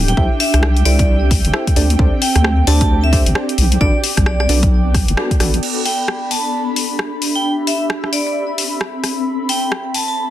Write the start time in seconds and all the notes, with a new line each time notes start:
Already playing: D1 D4 G4 E5 G5
0.08 G5, closed hi-hat
0.17 C2 C4 E4 G4 A4 C5 E5, kick
0.40 E5, open hi-hat
0.54 C2, cross-stick, closed hi-hat
0.63 cross-stick
0.77 closed hi-hat
0.85 C2 E4 G4 A4 C5 D5 E5, open hi-hat
0.90 A4
0.99 D5, kick, closed hi-hat
1.31 kick, open hi-hat
1.45 G1, closed hi-hat
1.54 E4 G4 A4 C5 E5, cross-stick
1.67 kick, closed hi-hat
1.76 D2 D4 G4 A4 C5 D5, open hi-hat
1.90 closed hi-hat
1.97 D2 D4 G4 A4 C5 D5, kick
2.22 G5, open hi-hat
2.36 D2, cross-stick, closed hi-hat
2.44 cross-stick
2.67 D2 D4 G4 A4 C5 D5 A5, open hi-hat
2.81 A5, kick, closed hi-hat
3.04 E5
3.13 D4 G4 A4 C5 D5, kick, open hi-hat
3.26 A1, closed hi-hat
3.35 D4 G4 A4 C5 D5, cross-stick
3.49 closed hi-hat
3.58 B1 B3, open hi-hat
3.72 closed hi-hat
3.81 B1 D4 F#4 A4 B4 D5, kick
3.88 A4
4.04 open hi-hat
4.17 B1, kick, cross-stick, closed hi-hat
4.26 D5, cross-stick
4.40 D5, cross-stick
4.49 B1 D4 F#4 A4 B4 D5, open hi-hat
4.63 kick, closed hi-hat
4.95 kick, cross-stick, open hi-hat
5.08 F#1, closed hi-hat
5.17 D4 F#4 A4 B4 D5, cross-stick
5.31 kick, closed hi-hat
5.40 A1 D4 F#4 A4 B4 D5, cross-stick, open hi-hat
5.54 closed hi-hat
5.63 D4 B5, crash
5.85 G5, open hi-hat
6.08 cross-stick
6.13 G4
6.31 A5, open hi-hat
6.45 E5 A5
6.76 open hi-hat
6.99 cross-stick
7.22 open hi-hat
7.36 G5
7.45 C4
7.67 E5, open hi-hat
7.90 cross-stick
8.04 cross-stick
8.13 A4 D5, open hi-hat
8.27 D5
8.58 open hi-hat
8.81 cross-stick
9.04 cross-stick, open hi-hat
9.36 D5
9.49 G5, open hi-hat
9.72 cross-stick
9.94 A5, open hi-hat
10.08 A5